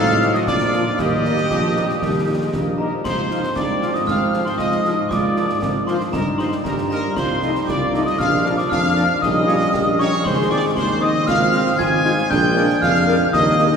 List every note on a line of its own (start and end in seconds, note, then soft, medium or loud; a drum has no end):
0.00 0.39 A2 loud
0.00 0.44 F#3 medium
0.00 0.27 C4 medium
0.00 0.43 D#4 loud
0.00 0.32 A4 loud
0.00 0.31 F5 loud
0.00 0.33 F6 loud
0.22 0.31 F#3 medium
0.22 0.31 C4 medium
0.22 0.31 D#4 medium
0.22 snare medium
0.34 0.48 F#4 medium
0.34 0.47 D#5 loud
0.34 0.40 D#6 medium
0.34 snare medium
0.46 0.90 A#2 medium
0.46 0.99 F3 medium
0.46 0.98 A#3 medium
0.46 0.95 D4 medium
0.46 0.99 F4 loud
0.46 0.94 D5 loud
0.46 1.00 D6 medium
0.46 concert bass drum medium
0.46 snare medium
0.60 snare medium
0.73 0.82 F3 medium
0.73 0.82 A#3 medium
0.73 0.82 F4 medium
0.73 snare medium
0.98 1.42 D#2 medium
0.98 1.45 G3 medium
0.98 1.42 A#3 medium
0.98 2.75 G4 loud
0.98 2.79 G4 loud
0.98 2.75 D#5 loud
0.98 2.52 D#6 loud
0.98 concert bass drum medium
0.98 snare medium
0.98 crash soft
1.24 1.34 G3 medium
1.24 1.34 A#3 medium
1.24 1.34 D#4 medium
1.24 snare medium
1.38 snare medium
1.50 1.89 A#1 medium
1.50 1.98 F3 loud
1.50 concert bass drum medium
1.50 snare medium
1.76 1.85 G3 medium
1.76 1.85 A#3 medium
1.76 1.85 D#4 medium
1.76 snare medium
1.89 snare medium
2.01 2.45 D#2 medium
2.01 2.40 G3 medium
2.01 concert bass drum medium
2.01 snare medium
2.27 2.37 G3 medium
2.27 2.37 A#3 medium
2.27 2.37 D#4 medium
2.41 2.52 G#3 medium
2.53 2.96 A#1 medium
2.53 2.92 A#3 loud
2.53 concert bass drum medium
2.53 snare medium
2.78 2.88 G3 medium
2.78 2.88 A#3 medium
2.78 2.88 D#4 medium
2.78 2.91 A#4 medium
2.78 3.02 A#5 medium
2.78 2.85 A#5 medium
2.92 3.03 F3 medium
3.04 3.48 G#2 medium
3.04 4.94 F3 medium
3.04 4.94 C4 medium
3.04 3.17 F4 medium
3.04 3.53 C5 loud
3.04 3.52 C6 medium
3.04 3.57 C6 medium
3.04 concert bass drum medium
3.04 snare medium
3.04 crash medium
3.30 3.40 F3 medium
3.30 3.40 C4 medium
3.30 3.43 D#4 medium
3.30 3.40 F4 medium
3.30 3.40 G#4 medium
3.30 3.40 F5 medium
3.30 snare medium
3.43 snare medium
3.56 3.99 G#2 medium
3.56 4.04 D4 medium
3.56 3.92 D5 loud
3.56 3.96 D6 medium
3.56 3.92 D6 medium
3.56 concert bass drum medium
3.56 snare medium
3.82 3.91 F3 medium
3.82 3.91 C4 medium
3.82 3.91 F4 medium
3.82 3.91 G#4 medium
3.82 3.91 F5 medium
3.82 snare medium
3.94 4.01 D#5 medium
3.94 4.06 D#6 medium
3.94 4.07 D#6 medium
3.94 snare medium
4.07 4.51 G#2 medium
4.07 4.55 C4 medium
4.07 4.43 F5 loud
4.07 4.43 F6 medium
4.07 concert bass drum medium
4.07 snare medium
4.33 4.43 F3 medium
4.33 4.43 C4 medium
4.33 4.43 F4 medium
4.33 4.42 G#4 medium
4.33 4.42 F5 medium
4.33 snare medium
4.45 4.58 C5 medium
4.45 4.58 C6 medium
4.45 4.60 C6 medium
4.45 snare medium
4.58 5.02 G#2 medium
4.58 4.86 F4 medium
4.58 5.06 D#5 loud
4.58 5.06 D#6 medium
4.58 5.09 D#6 medium
4.58 concert bass drum medium
4.58 snare medium
4.72 snare medium
4.84 4.94 F3 medium
4.84 4.94 C4 medium
4.84 5.10 D#4 medium
4.84 4.94 F4 medium
4.84 4.94 G#4 medium
4.84 4.94 F5 medium
4.84 snare medium
5.09 5.53 G#2 medium
5.09 6.09 F3 medium
5.09 6.14 A#3 medium
5.09 5.63 F4 medium
5.09 5.87 D5 loud
5.09 5.83 D6 medium
5.09 concert bass drum medium
5.09 snare medium
5.36 5.45 F3 medium
5.36 5.45 A#3 medium
5.36 5.45 F4 medium
5.36 5.46 A#4 medium
5.36 5.46 F5 medium
5.36 snare medium
5.49 snare medium
5.61 6.05 G#2 medium
5.61 5.90 C4 medium
5.61 concert bass drum medium
5.61 snare medium
5.87 5.97 F3 medium
5.87 5.96 A#3 medium
5.87 6.15 D4 medium
5.87 5.97 F4 medium
5.87 5.97 A#4 medium
5.87 5.99 C5 loud
5.87 5.97 F5 medium
5.87 6.11 C6 medium
5.87 5.93 C6 medium
5.87 snare medium
6.01 snare medium
6.13 6.56 G2 medium
6.13 8.19 G3 medium
6.13 8.19 D#4 medium
6.13 6.66 D#4 medium
6.13 6.25 A#4 loud
6.13 6.19 A#5 medium
6.13 6.37 A#5 medium
6.13 concert bass drum medium
6.13 snare medium
6.38 6.48 G3 medium
6.38 6.48 A#3 medium
6.38 6.48 D#4 medium
6.38 6.49 A#4 medium
6.38 6.51 C5 loud
6.38 6.48 D#5 medium
6.38 6.62 C6 medium
6.38 6.44 C6 medium
6.38 snare medium
6.52 snare medium
6.64 7.08 G2 medium
6.64 7.16 G4 medium
6.64 6.77 A#4 loud
6.64 6.88 A#5 medium
6.64 concert bass drum medium
6.64 snare medium
6.78 snare medium
6.89 6.99 G3 medium
6.89 6.99 A#3 medium
6.89 6.99 D#4 medium
6.89 7.00 A#4 medium
6.89 7.15 A#4 loud
6.89 7.00 D#5 medium
6.89 6.95 A#5 medium
6.89 7.14 A#5 medium
6.89 snare medium
7.16 7.59 C2 medium
7.16 7.40 F4 medium
7.16 7.64 C5 loud
7.16 7.64 C6 loud
7.16 7.64 C6 medium
7.16 concert bass drum medium
7.16 snare medium
7.16 crash soft
7.42 7.51 F3 medium
7.42 7.51 A3 medium
7.42 7.51 D#4 medium
7.42 7.70 D#4 medium
7.42 7.51 A4 medium
7.42 7.52 D#5 medium
7.42 snare medium
7.55 snare medium
7.67 8.10 C2 medium
7.67 8.20 F4 medium
7.67 8.04 D5 loud
7.67 8.03 D6 medium
7.67 concert bass drum medium
7.67 snare medium
7.93 8.02 F3 medium
7.93 8.03 A3 medium
7.93 8.03 D#4 medium
7.93 8.03 A4 medium
7.93 8.03 D#5 medium
7.93 snare medium
8.06 8.19 D#5 loud
8.06 8.12 D#6 medium
8.06 8.18 D#6 medium
8.06 snare medium
8.18 8.62 A#1 medium
8.18 9.22 F3 medium
8.18 8.70 D4 loud
8.18 9.22 D4 medium
8.18 8.55 F5 loud
8.18 8.54 F6 loud
8.18 8.55 F6 loud
8.18 concert bass drum medium
8.18 snare medium
8.45 8.54 F3 medium
8.45 8.54 A#3 medium
8.45 8.54 D4 medium
8.45 8.54 A#4 medium
8.45 8.54 D5 medium
8.45 snare medium
8.57 8.71 D5 loud
8.57 8.69 D6 medium
8.57 8.70 D6 medium
8.57 snare medium
8.70 9.09 F2 medium
8.70 9.24 D4 medium
8.70 9.18 F5 loud
8.70 9.18 F6 loud
8.70 9.23 F6 loud
8.70 concert bass drum medium
8.70 snare medium
8.84 snare medium
8.96 9.05 F3 medium
8.96 9.05 A#3 medium
8.96 9.05 D4 medium
8.96 9.05 A#4 medium
8.96 9.05 D5 medium
8.96 snare medium
9.21 9.65 A#1 medium
9.21 10.21 G3 medium
9.21 10.21 C#4 medium
9.21 9.50 D#4 loud
9.21 9.99 D#5 loud
9.21 9.95 D#6 loud
9.21 9.98 D#6 loud
9.21 concert bass drum medium
9.21 snare medium
9.47 9.57 G3 medium
9.47 9.57 C#4 medium
9.47 9.57 D#4 medium
9.47 9.73 F4 medium
9.47 9.57 G4 medium
9.47 9.57 C#5 medium
9.47 snare medium
9.61 snare medium
9.73 10.16 A#1 medium
9.73 10.04 G4 medium
9.73 concert bass drum medium
9.73 snare medium
9.99 10.08 G3 medium
9.99 10.08 C#4 medium
9.99 10.08 D#4 medium
9.99 10.08 G4 medium
9.99 10.08 C#5 medium
9.99 10.23 C#5 loud
9.99 10.26 C#6 loud
9.99 10.23 C#6 loud
9.99 snare medium
10.13 snare medium
10.24 10.67 G#1 medium
10.24 12.26 G#3 medium
10.24 12.30 C4 medium
10.24 10.78 G#4 loud
10.24 10.51 C5 loud
10.24 10.48 C6 loud
10.24 10.51 C6 loud
10.24 concert bass drum medium
10.24 snare medium
10.50 10.59 G#3 medium
10.50 10.59 C4 medium
10.50 10.59 D#4 medium
10.50 10.60 G#4 medium
10.50 10.60 C5 medium
10.50 10.63 D5 loud
10.50 10.75 D6 loud
10.76 11.19 D#2 medium
10.76 11.27 D#4 loud
10.76 11.00 C5 loud
10.76 11.02 C6 loud
10.76 11.00 C6 loud
10.76 concert bass drum medium
10.76 snare medium
11.01 11.10 G#3 medium
11.01 11.10 C4 medium
11.01 11.10 D#4 medium
11.01 11.11 G#4 medium
11.01 11.10 C5 medium
11.01 11.27 D#5 loud
11.01 11.28 D#6 loud
11.01 11.26 D#6 loud
11.27 11.70 G#1 loud
11.27 11.76 F4 loud
11.27 11.76 F5 loud
11.27 11.61 F6 loud
11.27 11.75 F6 loud
11.27 concert bass drum medium
11.27 snare medium
11.27 crash medium
11.53 11.62 G#3 medium
11.53 11.62 C4 medium
11.53 11.62 F4 medium
11.53 11.62 G#4 medium
11.53 11.62 C5 medium
11.53 snare medium
11.67 snare medium
11.78 12.22 G#1 medium
11.78 12.03 F4 loud
11.78 12.31 G#5 loud
11.78 12.26 G#6 loud
11.78 12.27 G#6 loud
11.78 concert bass drum medium
11.78 snare medium
12.04 12.13 G#3 medium
12.04 12.14 C4 medium
12.04 12.16 D#4 medium
12.04 12.13 F4 medium
12.04 12.14 G#4 medium
12.04 12.14 C5 medium
12.04 snare medium
12.18 snare medium
12.30 12.73 A#1 loud
12.30 13.29 G#3 medium
12.30 13.29 D4 medium
12.30 12.78 D4 loud
12.30 12.82 G5 loud
12.30 12.78 G6 loud
12.30 concert bass drum medium
12.30 snare medium
12.56 12.65 G#3 medium
12.56 12.65 D4 medium
12.56 12.66 G#4 medium
12.56 12.65 A#4 medium
12.56 12.66 D5 medium
12.56 snare medium
12.70 snare medium
12.81 13.25 F2 medium
12.81 13.05 F4 loud
12.81 13.30 F5 loud
12.81 13.29 F6 loud
12.81 13.30 F6 loud
12.81 concert bass drum medium
12.81 snare medium
12.95 snare medium
13.07 13.16 G#3 medium
13.07 13.16 D4 medium
13.07 13.19 D4 medium
13.07 13.17 G#4 medium
13.07 13.17 A#4 medium
13.07 13.17 D5 medium
13.07 snare medium
13.33 13.76 D#2 loud
13.33 13.77 G3 medium
13.33 13.77 D#4 loud
13.33 13.77 D#5 loud
13.33 13.61 D#6 loud
13.33 13.77 D#6 loud
13.33 concert bass drum medium
13.33 snare medium
13.59 13.68 G3 medium
13.59 13.68 D#4 medium
13.59 13.68 G4 medium
13.59 13.68 A#4 medium
13.59 13.68 D#5 medium
13.59 snare medium
13.73 snare medium